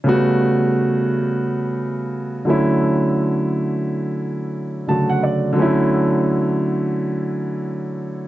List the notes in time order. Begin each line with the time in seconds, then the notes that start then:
0.04 C#3 G3 A3 B3
0.09 F#4
2.45 D3 F#3 A3 C#4
2.50 E4
4.87 C#3 D3 F#3 A3 F#4 A5
5.09 F#5
5.23 D5
5.53 D3 F#3
5.58 A3 C#4
5.62 E4